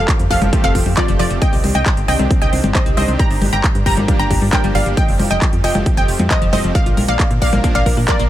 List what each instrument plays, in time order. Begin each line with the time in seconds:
Already playing: synth pluck A4 F5, downlifter
0.08 synth arpeggio sound F3, supersaw synth F3 A3 C4 G4, kick, clap, closed hi-hat
0.19 synth arpeggio sound F2, fm bass F2, closed hi-hat
0.30 fm bass F1, supersaw synth F3 A3 C4 G4, synth arpeggio sound F3, synth pluck A4 F5, kick, open hi-hat
0.42 fm bass F1, synth arpeggio sound F3, closed hi-hat, high conga
0.53 synth arpeggio sound F3, supersaw synth F3 A3 C4 G4, kick, closed hi-hat
0.64 fm bass F1, synth arpeggio sound C4, synth pluck A4 F5, closed hi-hat
0.75 fm bass F1, synth arpeggio sound F4, kick, open hi-hat
0.86 fm bass F2, synth arpeggio sound F3, open hi-hat
0.97 synth arpeggio sound F3, supersaw synth F3 A3 C4 G4, synth pluck F4 D5, kick, clap, closed hi-hat
1.08 fm bass F1, synth arpeggio sound F3, supersaw synth F3 A3 C4 G4, closed hi-hat
1.19 fm bass F1, synth arpeggio sound F3, synth pluck F4 D5, open hi-hat
1.30 fm bass F1, synth arpeggio sound F3, supersaw synth F3 A3 C4 G4, closed hi-hat
1.42 supersaw synth D#3 C4 D4 G4, synth arpeggio sound C4, synth pluck D#5 G5, kick, closed hi-hat
1.53 fm bass C2, synth arpeggio sound G4, open hi-hat
1.64 fm bass C2, synth arpeggio sound C5, open hi-hat, high conga
1.75 fm bass C2, synth arpeggio sound C4, synth pluck D#5 G5, closed hi-hat
1.86 supersaw synth D#3 C4 D4 G4, synth arpeggio sound C4, kick, clap, closed hi-hat
1.97 fm bass G1, synth arpeggio sound C3, closed hi-hat
2.08 fm bass C2, supersaw synth D#3 C4 D4 G4, synth arpeggio sound C4, synth pluck D#5 G5, open hi-hat
2.19 fm bass C2, synth arpeggio sound C4, closed hi-hat, high conga
2.31 supersaw synth D#3 C4 D4 G4, synth arpeggio sound C4, kick, closed hi-hat
2.42 fm bass C2, synth arpeggio sound G4, synth pluck D#5 G5, closed hi-hat
2.53 fm bass C2, synth arpeggio sound C5, open hi-hat
2.64 fm bass G1, synth arpeggio sound C4, closed hi-hat, high conga
2.75 supersaw synth D#3 C4 D4 G4, synth arpeggio sound C4, synth pluck C5 D#5, kick, clap, closed hi-hat
2.86 fm bass C2, supersaw synth D#3 C4 D4 G4, synth arpeggio sound C4, closed hi-hat
2.97 fm bass C2, synth arpeggio sound C4, synth pluck C5 D#5, open hi-hat, high conga
3.08 fm bass C2, supersaw synth D#3 C4 D4 G4, synth arpeggio sound C4, closed hi-hat
3.19 supersaw synth F3 A#3 D4 G4, synth arpeggio sound G3, synth pluck G5 A#5, kick, closed hi-hat
3.30 fm bass G1, synth arpeggio sound D4, open hi-hat
3.42 fm bass G1, synth arpeggio sound G4, open hi-hat, high conga
3.53 fm bass G1, synth arpeggio sound G3, synth pluck G5 A#5, closed hi-hat
3.64 supersaw synth F3 A#3 D4 G4, synth arpeggio sound G3, kick, clap, closed hi-hat
3.75 fm bass G2, synth arpeggio sound G2, closed hi-hat
3.86 fm bass G1, supersaw synth F3 A#3 D4 G4, synth arpeggio sound G3, synth pluck G5 A#5, kick, open hi-hat
3.97 fm bass G1, synth arpeggio sound G3, closed hi-hat, high conga
4.08 supersaw synth F3 A#3 D4 G4, synth arpeggio sound G3, kick, closed hi-hat
4.19 fm bass G1, synth arpeggio sound D4, synth pluck G5 A#5, closed hi-hat
4.31 fm bass G1, synth arpeggio sound G4, kick, open hi-hat
4.42 fm bass G2, synth arpeggio sound G3, open hi-hat
4.53 supersaw synth F3 A#3 D4 G4, synth arpeggio sound G3, synth pluck A#4 G5, kick, clap, closed hi-hat
4.64 fm bass G1, supersaw synth F3 A#3 D4 G4, synth arpeggio sound G3, closed hi-hat
4.75 fm bass G1, synth arpeggio sound G3, synth pluck D5 F5, open hi-hat
4.86 fm bass G1, supersaw synth F3 A#3 D4 G4, synth arpeggio sound G3, closed hi-hat
4.97 supersaw synth F3 A3 C4 G4, synth arpeggio sound F3, synth pluck D#5 G5, kick, closed hi-hat
5.08 fm bass F1, synth arpeggio sound C4, open hi-hat
5.19 fm bass F1, synth arpeggio sound F4, open hi-hat, high conga
5.31 fm bass F1, synth arpeggio sound F3, synth pluck D#5 G5, closed hi-hat
5.42 supersaw synth F3 A3 C4 G4, synth arpeggio sound F3, kick, clap, closed hi-hat
5.53 fm bass F2, synth arpeggio sound F2, closed hi-hat
5.64 fm bass F1, synth arpeggio sound F3, supersaw synth F3 A3 C4 G4, synth pluck D#5 G5, open hi-hat
5.75 fm bass F1, synth arpeggio sound F3, closed hi-hat, high conga
5.86 supersaw synth F3 A3 C4 G4, synth arpeggio sound F3, kick, closed hi-hat
5.97 fm bass F1, synth arpeggio sound C4, synth pluck D#5 G5, closed hi-hat
6.08 fm bass F1, synth arpeggio sound F4, open hi-hat
6.19 fm bass F2, synth arpeggio sound F3, closed hi-hat, high conga
6.31 synth arpeggio sound F3, supersaw synth F3 A3 C4 G4, synth pluck C5 D#5, kick, clap, closed hi-hat
6.42 fm bass F1, synth arpeggio sound F3, supersaw synth F3 A3 C4 G4, closed hi-hat
6.53 fm bass F1, synth arpeggio sound F3, synth pluck C5 D#5, open hi-hat, high conga
6.64 fm bass F1, synth arpeggio sound F3, supersaw synth F3 A3 C4 G4, closed hi-hat
6.75 supersaw synth F3 A#3 D4 A#4, synth arpeggio sound A#3, synth pluck D5 F5, kick, closed hi-hat
6.86 fm bass A#1, synth arpeggio sound F4, closed hi-hat
6.97 fm bass A#1, synth arpeggio sound A#4, open hi-hat, high conga
7.08 fm bass A#1, synth arpeggio sound A#3, synth pluck D5 F5
7.19 supersaw synth F3 A#3 D4 A#4, synth arpeggio sound A#3, kick, clap, closed hi-hat
7.31 synth arpeggio sound A#2, fm bass A#2, closed hi-hat
7.42 fm bass A#1, supersaw synth F3 A#3 D4 A#4, synth arpeggio sound A#3, synth pluck D5 F5, kick, open hi-hat
7.53 fm bass A#1, synth arpeggio sound A#3, closed hi-hat, high conga
7.64 supersaw synth F3 A#3 D4 A#4, synth arpeggio sound A#3, kick, closed hi-hat
7.75 fm bass A#1, synth arpeggio sound F4, synth pluck D5 F5, closed hi-hat
7.86 fm bass A#1, synth arpeggio sound A#4, kick, open hi-hat
7.97 fm bass A#2, synth arpeggio sound A#3, open hi-hat
8.08 supersaw synth F3 A#3 D4 A#4, synth arpeggio sound A#3, synth pluck A#4 D5, kick, clap, closed hi-hat
8.19 fm bass A#1, supersaw synth F3 A#3 D4 A#4, synth arpeggio sound A#3, closed hi-hat